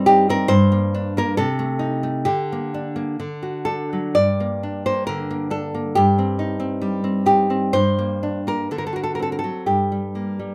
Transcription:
0.00 0.48 G2 medium
0.00 0.51 G3 medium
0.00 0.28 C4 medium
0.06 0.51 D#4 medium
0.06 0.29 G4 medium
0.29 0.51 C4 medium
0.29 0.52 A#4 loud
0.48 1.35 G2 medium
0.48 1.13 C5 loud
0.72 1.16 A#3 medium
0.95 1.39 D4 medium
1.17 1.39 A#3 medium
1.17 1.37 A#4 medium
1.37 2.25 C3 medium
1.37 2.24 A4 loud
1.59 2.02 A3 medium
1.79 2.26 D#4 medium
2.03 2.27 A3 medium
2.25 3.16 D3 medium
2.25 3.14 G4 medium
2.52 2.95 A#3 soft
2.74 3.20 D4 soft
2.96 3.19 A#3 soft
3.20 4.14 D3 medium
3.43 4.17 F#4 soft
3.65 4.16 D4 soft
3.65 4.14 A4 medium
3.93 4.17 F#3 soft
4.15 5.92 G2 medium
4.15 4.82 D5 medium
4.40 4.85 A#3 soft
4.63 5.49 D4 soft
4.86 5.29 A#3 soft
4.86 5.06 C5 medium
5.07 5.97 D3 soft
5.07 5.50 A#4 medium
5.31 5.73 A#3 soft
5.50 5.96 D4 soft
5.50 5.94 A4 medium
5.75 5.97 A#3 soft
5.95 7.71 G2 medium
5.95 7.22 G4 medium
6.19 6.58 C4 soft
6.39 7.25 D#4 soft
6.60 7.03 C4 medium
6.82 7.74 G3 soft
7.04 7.49 C4 soft
7.26 7.74 D#4 soft
7.26 7.72 G4 medium
7.50 7.74 C4 medium
7.73 8.66 G2 medium
7.73 8.42 C5 loud
7.99 8.46 A#3 soft
8.23 8.70 D4 soft
8.47 8.70 A#3 soft
8.47 8.71 A#4 medium
8.71 9.43 D3 medium
8.71 8.78 A4 medium
8.78 8.86 A#4 medium
8.87 8.95 A4 medium
8.93 9.66 F#4 soft
8.93 9.03 A#4 medium
9.04 9.12 A4 medium
9.15 9.22 A#4 medium
9.20 9.67 C4 soft
9.20 9.30 A4 medium
9.32 9.38 A#4 medium
9.39 9.65 A4 medium
9.44 9.67 F#3 soft
9.66 10.55 G2 soft
9.66 10.55 G4 medium
9.92 10.38 G3 soft
10.15 10.55 A#3 soft
10.39 10.55 G3 soft

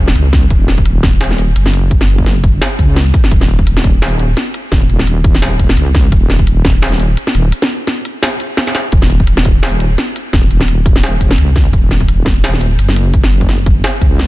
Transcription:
0.00 0.14 D#1 loud
0.08 snare medium
0.15 0.49 C#2 loud
0.15 closed hi-hat medium
0.33 kick loud
0.33 snare medium
0.33 closed hi-hat medium
0.50 1.55 D#1 loud
0.50 kick loud
0.50 closed hi-hat medium
0.68 snare medium
0.68 closed hi-hat soft
0.78 kick medium
0.86 closed hi-hat medium
1.03 kick loud
1.03 snare medium
1.03 closed hi-hat medium
1.21 snare loud
1.21 closed hi-hat medium
1.31 snare medium
1.39 closed hi-hat medium
1.56 2.60 F#1 loud
1.56 closed hi-hat medium
1.66 snare medium
1.74 closed hi-hat medium
1.91 kick loud
1.91 closed hi-hat medium
2.01 snare medium
2.09 closed hi-hat soft
2.18 kick medium
2.26 snare medium
2.26 closed hi-hat medium
2.44 kick loud
2.44 closed hi-hat medium
2.62 snare loud
2.62 snare soft
2.62 closed hi-hat medium
2.79 3.13 C#2 loud
2.79 kick medium
2.79 closed hi-hat medium
2.96 snare medium
2.96 closed hi-hat medium
3.14 kick loud
3.14 closed hi-hat medium
3.24 snare soft
3.31 4.35 D#1 loud
3.31 kick loud
3.31 closed hi-hat medium
3.41 snare medium
3.49 closed hi-hat soft
3.59 kick medium
3.67 closed hi-hat medium
3.77 snare medium
3.84 kick loud
3.84 closed hi-hat medium
4.02 snare loud
4.02 snare medium
4.02 closed hi-hat medium
4.19 closed hi-hat medium
4.37 snare soft
4.37 closed hi-hat medium
4.54 closed hi-hat medium
4.72 5.76 D#1 loud
4.72 kick loud
4.72 snare medium
4.72 closed hi-hat medium
4.90 closed hi-hat soft
4.99 snare medium
5.07 closed hi-hat medium
5.24 kick loud
5.24 closed hi-hat medium
5.35 snare medium
5.42 snare loud
5.42 closed hi-hat medium
5.59 kick medium
5.59 closed hi-hat medium
5.69 snare medium
5.77 6.11 C#2 loud
5.77 closed hi-hat medium
5.95 kick loud
5.95 snare medium
5.95 closed hi-hat medium
6.12 7.16 D#1 loud
6.12 kick loud
6.12 closed hi-hat medium
6.30 snare medium
6.30 closed hi-hat soft
6.39 kick medium
6.47 closed hi-hat medium
6.65 kick loud
6.65 snare medium
6.65 closed hi-hat medium
6.82 snare loud
6.82 closed hi-hat medium
6.92 snare medium
7.00 closed hi-hat medium
7.17 closed hi-hat medium
7.27 snare medium
7.35 7.52 D#1 medium
7.35 closed hi-hat medium
7.52 closed hi-hat medium
7.62 snare medium
7.70 closed hi-hat soft
7.87 snare medium
7.87 closed hi-hat medium
8.05 closed hi-hat medium
8.23 snare loud
8.23 snare medium
8.23 closed hi-hat medium
8.40 closed hi-hat medium
8.57 snare medium
8.57 closed hi-hat medium
8.67 snare soft
8.75 snare medium
8.75 closed hi-hat medium
8.92 9.97 D#1 loud
8.92 kick loud
8.92 closed hi-hat medium
9.02 snare medium
9.10 closed hi-hat soft
9.20 kick medium
9.27 closed hi-hat medium
9.37 snare medium
9.45 kick loud
9.45 closed hi-hat medium
9.63 snare loud
9.63 snare medium
9.63 closed hi-hat medium
9.80 closed hi-hat medium
9.98 snare medium
9.98 closed hi-hat medium
10.16 closed hi-hat medium
10.33 11.37 D#1 loud
10.33 kick loud
10.33 snare medium
10.33 closed hi-hat medium
10.51 closed hi-hat soft
10.61 snare medium
10.68 closed hi-hat medium
10.86 kick loud
10.86 closed hi-hat medium
10.96 snare medium
11.03 snare loud
11.03 closed hi-hat medium
11.21 kick medium
11.21 closed hi-hat medium
11.31 snare medium
11.38 11.72 C#2 loud
11.38 closed hi-hat medium
11.56 kick loud
11.56 snare medium
11.56 closed hi-hat medium
11.73 12.77 D#1 loud
11.73 kick loud
11.73 closed hi-hat medium
11.91 snare medium
11.91 closed hi-hat soft
12.00 kick medium
12.09 closed hi-hat medium
12.26 kick loud
12.26 snare medium
12.26 closed hi-hat medium
12.44 snare loud
12.44 closed hi-hat medium
12.53 snare medium
12.61 closed hi-hat medium
12.78 13.82 F#1 loud
12.78 closed hi-hat medium
12.89 snare medium
12.96 closed hi-hat medium
13.14 kick loud
13.14 closed hi-hat medium
13.24 snare medium
13.31 closed hi-hat soft
13.41 kick medium
13.49 snare medium
13.49 closed hi-hat medium
13.66 kick loud
13.66 closed hi-hat medium
13.84 snare loud
13.84 snare soft
13.84 closed hi-hat medium
14.01 14.27 C#2 loud
14.01 kick medium
14.01 closed hi-hat medium
14.19 snare medium
14.19 closed hi-hat medium

